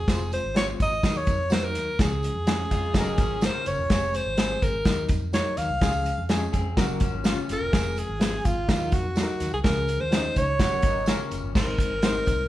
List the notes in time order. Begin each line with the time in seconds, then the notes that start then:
Already playing: G#4
0.08 F1 G#3 C4 F4 C5, kick, snare, closed hi-hat, tambourine
0.32 C5, closed hi-hat, tambourine
0.44 G#1
0.55 G#3 C4 F4 C5 C#5, snare, closed hi-hat, tambourine
0.80 G#1 D#5, kick, closed hi-hat, tambourine
1.03 D#2 F#3 A#3 D#4 A#4, kick, snare, closed hi-hat, tambourine
1.17 C#5
1.27 F2, kick, closed hi-hat, tambourine
1.50 F#3 A#3 D#4 A#4 C5, snare, closed hi-hat, tambourine
1.64 A#4
1.75 D#2, snare, closed hi-hat, tambourine
1.99 C#2 F3 G#3 C#4 G#4, kick, snare, closed hi-hat, tambourine
2.23 closed hi-hat, tambourine
2.35 F2
2.47 F3 G#3 C#4 G#4, snare, closed hi-hat, tambourine
2.71 F2 G#3 F4, kick, closed hi-hat, tambourine
2.93 F#1 F#3 A#3 C#4 D#4 A4, kick, snare, closed hi-hat, tambourine
3.01 A#4
3.18 G#1 F3 C#4, kick, closed hi-hat, tambourine
3.41 C#3 A#3 C#4 G#4 C5, snare, closed hi-hat, tambourine
3.49 A#4
3.66 F#1 C#5, closed hi-hat, tambourine
3.79 E1
3.89 F1 F3 G#3 C4 G#4, kick, snare, closed hi-hat, tambourine
4.14 C5, closed hi-hat, tambourine
4.26 G#1
4.38 F3 G#3 C4 G#4, snare, closed hi-hat, tambourine
4.62 G#1 A#4, kick, closed hi-hat, tambourine
4.85 D#2 F3 A#3 D#4 A#4, kick, snare, closed hi-hat, tambourine
4.91 F#3
5.09 F2, kick, closed hi-hat, tambourine
5.33 F#3 A#3 D#4 A#4 C#5, snare, closed hi-hat, tambourine
5.57 D#2 F5, snare, closed hi-hat, tambourine
5.69 C2
5.81 C#2 F3 G#3 C#4 G#4, kick, snare, closed hi-hat, tambourine
6.05 closed hi-hat, tambourine
6.18 F2
6.29 F3 G#3 C#4 G#4, snare, closed hi-hat, tambourine
6.53 F2 C4 G#4, kick, closed hi-hat, tambourine
6.77 F#1 F#3 A#3 C#4 F#4 A#4, kick, snare, closed hi-hat, tambourine
7.00 F3 C#4, kick, closed hi-hat, tambourine
7.13 G#1
7.24 C#3 A#3 C#4 F4, snare, closed hi-hat, tambourine
7.49 F#1 A#4, snare, closed hi-hat, tambourine
7.61 E1
7.72 F1 F3 G#3 C4 G#4, kick, snare, closed hi-hat, tambourine
7.96 G#4, closed hi-hat, tambourine
8.09 G#1
8.20 F3 G#3 C4 G#4, snare, closed hi-hat, tambourine
8.45 G#1 F4, kick, closed hi-hat, tambourine
8.68 D#2 F#3 A#3 D#4 A#4, kick, snare, closed hi-hat, tambourine
8.92 F2 F#4, kick, closed hi-hat, tambourine
9.16 F#3 A#3 D#4 A4, snare, closed hi-hat, tambourine
9.23 A#4
9.40 D#2, snare, closed hi-hat, tambourine
9.53 C2 G#4
9.64 C#2 E3 G#3 C#4 G#4 A#4, kick, snare, closed hi-hat, tambourine
9.70 F3
9.88 closed hi-hat, tambourine
10.00 D#2 C5
10.11 F3 G#3 C#4 D4, snare, closed hi-hat, tambourine
10.18 D#4
10.36 C#2 C#5, kick, closed hi-hat, tambourine
10.59 F#1 F#3 A#3 C#4 F#4 A#4, kick, snare, closed hi-hat, tambourine
10.82 G#1 F#3 D#4, kick, closed hi-hat, tambourine
11.06 C#3 F3 A#3 C#4 A#4, snare, closed hi-hat, tambourine
11.31 F#1, closed hi-hat, tambourine
11.44 G1
11.55 G#1 G#3 C4 D#4 A#4 C5, kick, snare, crash, tambourine
11.78 kick, closed hi-hat, tambourine
11.91 G#1
12.02 G#3 C4 D#4 C5, snare, closed hi-hat, tambourine
12.26 C2, kick, closed hi-hat, tambourine